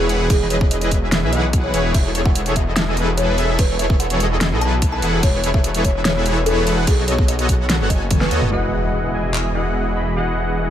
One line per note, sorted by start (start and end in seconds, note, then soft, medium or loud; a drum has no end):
0.00 0.29 E1 loud
0.00 0.25 G#4 loud
0.09 0.27 E3 medium
0.09 0.27 E4 medium
0.09 0.27 G#4 medium
0.09 0.27 B4 medium
0.09 0.27 F#5 medium
0.09 closed hi-hat medium
0.30 1.24 E1 loud
0.30 0.89 E3 loud
0.30 0.89 E4 medium
0.30 0.89 G#4 medium
0.30 0.48 G#4 medium
0.30 0.89 B4 medium
0.30 0.89 D#5 loud
0.30 kick loud
0.30 closed hi-hat medium
0.30 crash soft
0.50 0.69 C#5 medium
0.50 closed hi-hat medium
0.61 kick loud
0.71 0.98 D#5 medium
0.71 closed hi-hat medium
0.81 closed hi-hat medium
0.91 1.31 E3 medium
0.91 1.31 E4 medium
0.91 1.31 G#4 medium
0.91 1.31 B4 medium
0.91 1.31 E5 medium
0.91 kick medium
0.91 closed hi-hat medium
1.12 snare loud
1.12 closed hi-hat medium
1.23 1.72 B1 loud
1.33 1.71 E3 loud
1.33 1.71 E4 medium
1.33 1.71 G#4 medium
1.33 1.71 B4 medium
1.33 1.60 D#5 loud
1.33 1.71 F#5 loud
1.33 closed hi-hat medium
1.53 kick loud
1.53 closed hi-hat medium
1.64 1.91 C#5 medium
1.74 1.93 E1 medium
1.74 1.92 E3 medium
1.74 1.92 E4 medium
1.74 1.92 G#4 medium
1.74 1.92 B4 medium
1.74 1.92 C#5 medium
1.74 closed hi-hat medium
1.94 3.57 E1 loud
1.94 2.54 E3 medium
1.94 2.53 E4 medium
1.94 2.53 G#4 medium
1.94 2.53 A4 medium
1.94 2.53 C#5 loud
1.94 2.21 E5 loud
1.94 kick loud
1.94 closed hi-hat medium
1.94 crash soft
2.15 closed hi-hat medium
2.25 2.52 F#5 loud
2.25 kick loud
2.35 closed hi-hat medium
2.46 closed hi-hat medium
2.56 2.95 E3 medium
2.56 2.95 E4 medium
2.56 2.95 G#4 medium
2.56 2.95 A4 medium
2.56 2.95 D#5 medium
2.56 2.74 E5 loud
2.56 kick medium
2.56 closed hi-hat medium
2.76 3.13 E5 medium
2.76 snare loud
2.76 closed hi-hat medium
2.97 3.36 E3 medium
2.97 3.36 E4 medium
2.97 3.36 G#4 medium
2.97 3.36 A4 medium
2.97 3.36 B4 loud
2.97 closed hi-hat medium
3.17 3.54 C#5 loud
3.17 closed hi-hat medium
3.38 3.56 E3 medium
3.38 3.56 E4 medium
3.38 3.56 G#4 medium
3.38 3.56 A4 medium
3.38 3.56 E5 medium
3.38 closed hi-hat medium
3.59 4.53 E1 loud
3.59 4.18 E3 loud
3.59 4.18 E4 medium
3.59 4.18 G#4 medium
3.59 4.18 A4 medium
3.59 3.77 B4 medium
3.59 4.18 C#5 loud
3.59 kick loud
3.59 closed hi-hat medium
3.59 crash medium
3.79 3.97 E5 medium
3.79 closed hi-hat medium
3.90 kick loud
4.00 4.27 F#5 medium
4.00 closed hi-hat medium
4.10 closed hi-hat medium
4.20 4.59 E3 medium
4.20 4.59 E4 medium
4.20 4.59 G#4 medium
4.20 4.59 A4 medium
4.20 4.59 D#5 medium
4.20 closed hi-hat medium
4.41 snare loud
4.41 closed hi-hat medium
4.51 5.01 B1 loud
4.61 5.00 E3 medium
4.61 5.00 E4 medium
4.61 5.00 G#4 medium
4.61 5.00 A4 medium
4.61 5.00 B4 loud
4.61 4.88 A5 loud
4.61 closed hi-hat medium
4.82 kick loud
4.82 closed hi-hat medium
4.92 5.19 A5 loud
5.02 5.21 E1 medium
5.02 5.20 E3 medium
5.02 5.20 E4 medium
5.02 5.20 G#4 medium
5.02 5.20 A4 medium
5.02 5.20 B4 medium
5.02 5.20 F#5 medium
5.02 closed hi-hat medium
5.23 6.86 E1 loud
5.23 5.82 E3 loud
5.23 5.82 E4 medium
5.23 5.82 G#4 medium
5.23 5.82 A4 medium
5.23 5.82 B4 medium
5.23 5.50 C#5 loud
5.23 5.82 C#5 loud
5.23 kick loud
5.23 closed hi-hat medium
5.23 crash soft
5.44 closed hi-hat medium
5.54 5.81 E5 loud
5.54 kick loud
5.64 closed hi-hat medium
5.75 closed hi-hat medium
5.85 6.24 E3 medium
5.85 6.24 E4 medium
5.85 6.24 G#4 medium
5.85 6.24 A4 medium
5.85 6.24 B4 medium
5.85 6.03 C#5 medium
5.85 6.24 E5 medium
5.85 kick medium
5.85 closed hi-hat medium
6.05 6.41 C#5 loud
6.05 snare loud
6.05 closed hi-hat medium
6.26 6.64 E3 medium
6.26 6.64 E4 medium
6.26 6.64 G#4 medium
6.26 6.64 A4 medium
6.26 6.64 B4 medium
6.26 6.64 C#5 loud
6.26 closed hi-hat medium
6.46 6.82 A4 loud
6.46 closed hi-hat medium
6.67 6.84 E3 medium
6.67 6.84 E4 medium
6.67 6.84 G#4 medium
6.67 6.84 A4 medium
6.67 6.84 B4 medium
6.67 6.84 F#5 medium
6.67 closed hi-hat medium
6.87 7.82 B1 loud
6.87 7.47 B3 loud
6.87 7.47 F#4 medium
6.87 7.05 G#4 medium
6.87 7.47 A4 medium
6.87 7.47 C#5 medium
6.87 7.47 D#5 loud
6.87 kick loud
6.87 closed hi-hat medium
6.87 crash medium
7.08 7.26 C#5 medium
7.08 closed hi-hat medium
7.18 kick loud
7.28 7.56 D#5 loud
7.28 closed hi-hat medium
7.39 closed hi-hat medium
7.49 7.88 B3 medium
7.49 7.88 F#4 medium
7.49 7.88 A4 medium
7.49 7.88 C#5 medium
7.49 7.88 F#5 medium
7.49 kick medium
7.49 closed hi-hat medium
7.70 snare loud
7.70 closed hi-hat medium
7.80 8.30 F#1 loud
7.90 8.29 B3 loud
7.90 8.29 F#4 medium
7.90 8.29 A4 medium
7.90 8.29 C#5 medium
7.90 8.17 D#5 medium
7.90 8.29 G#5 loud
7.90 kick medium
7.90 closed hi-hat medium
8.11 kick loud
8.11 closed hi-hat medium
8.11 high tom medium
8.21 8.48 B4 medium
8.21 snare medium
8.31 8.41 D#2 loud
8.31 8.49 B3 medium
8.31 8.49 F#4 medium
8.31 8.49 A4 medium
8.31 8.49 C#5 medium
8.31 8.49 D#5 medium
8.31 closed hi-hat medium
8.42 8.51 F#1 medium
8.42 mid tom medium
8.50 10.70 E1 medium
8.50 9.11 E3 medium
8.50 10.70 E3 medium
8.50 10.70 G#3 medium
8.50 10.70 B3 medium
8.50 10.70 E4 medium
8.50 9.11 E4 medium
8.50 10.70 F#4 medium
8.50 9.11 G#4 medium
8.50 10.70 G#4 medium
8.50 9.11 D#5 medium
8.50 10.70 D#5 medium
8.50 9.11 F#5 loud
8.50 impact medium
9.14 9.53 E3 medium
9.14 9.53 E4 medium
9.14 9.53 G#4 medium
9.14 9.53 D#5 medium
9.14 9.53 G#5 medium
9.34 clap medium
9.55 9.93 E3 medium
9.55 9.93 E4 medium
9.55 9.93 G#4 medium
9.55 9.93 D#5 medium
9.55 9.93 F#5 medium
9.96 10.13 E3 medium
9.96 10.13 E4 medium
9.96 10.13 G#4 medium
9.96 10.13 D#5 medium
9.96 10.13 B5 medium
10.16 10.70 E3 medium
10.16 10.70 E4 medium
10.16 10.70 G#4 medium
10.16 10.70 D#5 medium
10.16 10.70 F#5 loud